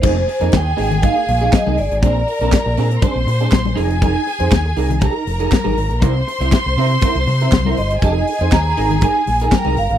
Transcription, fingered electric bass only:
\new Staff \with { instrumentName = "Fingered electric bass" } { \clef bass \time 4/4 \key f \dorian \tempo 4 = 120 f,,8 r16 f,16 ees,8 aes,,8. r16 bes,,8 r16 c,16 g,,16 aes,,16 | bes,,8 r16 bes,,16 r16 bes,,16 bes,8 r16 bes,,16 bes,8 bes,,8 f,,8~ | f,,8 r16 f,16 ees,8 c,8. r16 f,,8 r16 aes,,16 aes,,16 bes,,16 | c,8 r16 c,16 r16 c,16 c8 r16 c,16 c8 c,8 g,,8 |
f,,8 r16 f,16 ees,8 aes,,8. r16 bes,,8 r16 c,16 g,,16 aes,,16 | }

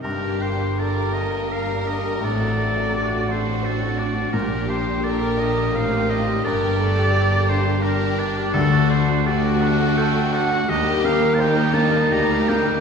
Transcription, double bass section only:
\new Staff \with { instrumentName = "Double bass section" } { \clef bass \time 3/4 \key g \minor \tempo 4 = 84 g,,2. | a,,2. | bes,,2 a,,4 | g,,2. |
d,2. | ees,2 d,4 | }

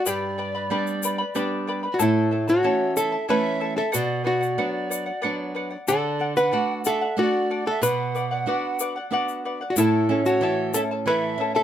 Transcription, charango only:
\new Staff \with { instrumentName = "Charango" } { \time 3/4 \key a \mixolydian \tempo 4 = 93 <g' b' d'' g'' b''>8 <b' d'' g'' b''>16 <b' d'' b''>16 <g' b' d'' g'' b''>8 <b' d'' g'' b''>16 <b' d'' b''>16 <g' b' d'' g'' b''>8 <b' d'' g'' b''>16 <b' d'' b''>16 | <e' a' cis'' e'' a''>8 <e' a' e'' a''>16 <e' a' a''>16 <e' a' cis'' e'' a''>8 <e' a' e'' a''>16 <e' a' a''>16 <e' a' cis'' e'' a''>8 <e' a' e'' a''>16 <e' a' a''>16 | <b' d'' fis''>8 <b' d'' fis''>16 <d'' fis''>16 <b' d'' fis''>8 <b' d'' fis''>16 <d'' fis''>16 <b' d'' fis''>8 <b' d'' fis''>16 <d'' fis''>16 | <a' d'' fis''>8 <a' d'' fis''>16 <d'' fis''>16 <a' d'' fis''>8 <a' d'' fis''>16 <d'' fis''>16 <a' d'' fis''>8 <a' d'' fis''>16 <d'' fis''>16 |
<b' d'' fis''>8 <b' d'' fis''>16 <d'' fis''>16 <b' d'' fis''>8 <b' d'' fis''>16 <d'' fis''>16 <b' d'' fis''>8 <b' d'' fis''>16 <d'' fis''>16 | <e' a' cis'' e'' a''>8 <e' a' e'' a''>16 <e' a' a''>16 <e' a' cis'' e'' a''>8 <e' a' e'' a''>16 <e' a' a''>16 <e' a' cis'' e'' a''>8 <e' a' e'' a''>16 <e' a' a''>16 | }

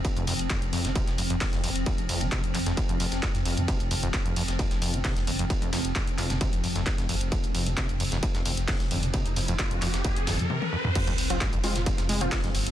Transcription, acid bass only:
\new Staff \with { instrumentName = "Acid bass" } { \clef bass \time 4/4 \key c \phrygian \tempo 4 = 132 ees,16 f,16 f,16 r16 f,16 r16 f,16 ees16 c16 r16 f,16 f,16 ees,16 f,16 f,16 r16 | f,16 r16 f,16 ees16 c16 r16 f,16 f,16 ees,16 f,16 f,16 r16 f,16 r16 f,16 ees16 | c16 r16 f,16 f,16 ees,16 f,16 f,16 r16 f,16 r16 f,16 ees16 c16 r16 f,16 f,16 | ees,16 f,16 f,16 r16 f,16 r16 f,16 ees16 c16 r16 f,16 f,16 ees,16 f,16 f,16 r16 |
f,16 r16 f,16 ees16 c16 r16 f,16 f,16 ees,16 f,16 f,16 r16 f,16 r16 f,16 ees16 | c16 r16 f,16 f,16 ees,16 f,16 f,16 r16 f,16 r16 f,16 ees16 c16 r16 f,16 f,16 | f,16 f,16 r8 aes,16 f,16 aes16 f,16 f,16 r16 aes16 f,16 f,16 f,16 r8 | }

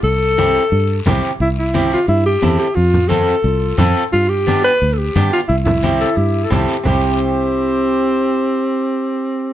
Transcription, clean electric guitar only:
\new Staff \with { instrumentName = "Clean electric guitar" } { \time 4/4 \key c \major \tempo 4 = 176 r4 <c' e' g'>8 r4. <c' e' g'>8 r8 | r4 <c' e' g'>8 r4. <c' e' a'>8 r8 | r4 <c' f' a'>8 r4. <c' f' a'>8 r8 | r4 <b d' g'>8 r4. <b d' g'>8 r8 |
r4 <c' e' g'>8 r4. <c' e' a'>8 r8 | <c' e' g'>1~ | <c' e' g'>1 | }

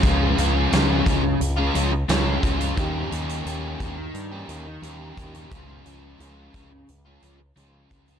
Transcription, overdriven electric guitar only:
\new Staff \with { instrumentName = "Overdriven electric guitar" } { \time 4/4 \key des \lydian \tempo 4 = 88 <des f aes des' f'>8 <f aes des' f'>8 <des f aes des' f'>8 <f aes des' f'>8. <aes des' f'>16 <f aes des' f'>8 <des f aes des' f'>8 <f aes des' f'>16 <aes des' f'>16 | <ees bes des' g'>8 <ees bes des' g'>8 <ees bes des' g'>8 <ees bes des' g'>8. <bes des' g'>16 <ees bes des' g'>8 <ees bes des' g'>8 <ees bes des' g'>16 <bes des' g'>16 | <des f aes des' f'>8 <f aes des' f'>8 <des f aes des' f'>8 <f aes des' f'>8. <aes des' f'>16 <f aes des' f'>8 <des f aes des' f'>8 <f aes des' f'>16 <aes des' f'>16 | }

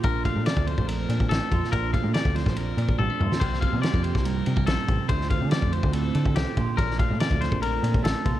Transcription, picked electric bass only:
\new Staff \with { instrumentName = "Picked electric bass" } { \clef bass \time 4/4 \key bes \lydian \tempo 4 = 142 bes,,8. bes,16 r16 d,8 bes,,8. bes,8 a,,16 r16 f,16 r16 | bes,,8. bes,16 r16 d,8 bes,,8. bes,8 a,,16 r16 g,16 r16 | c,8. c16 r16 f,8 c,8. c8 bes,,16 r16 a,,16 r16 | d,8. d16 r16 f,8 d,8. d8 c,16 r16 bes,,16 r16 |
bes,,8. bes,16 r16 d,8 bes,,8. bes,8 a,,16 r16 c,16 r16 | }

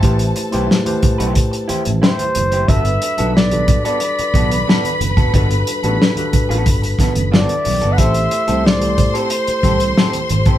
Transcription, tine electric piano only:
\new Staff \with { instrumentName = "Tine electric piano" } { \time 4/4 \key a \dorian \tempo 4 = 90 <a e' g' b' c''>8. <a e' g' b' c''>8 <a e' g' b' c''>4.~ <a e' g' b' c''>16 r4 | <g d' fis' a' b'>8. <g d' fis' a' b'>8 <g d' fis' a' b'>4.~ <g d' fis' a' b'>16 r4 | <g d' fis' a' b'>8. <g d' fis' a' b'>8 <g d' fis' a' b'>4.~ <g d' fis' a' b'>16 r4 | <a e' g' a' c''>8. <a e' g' a' c''>8 <a e' g' a' c''>4.~ <a e' g' a' c''>16 r4 | }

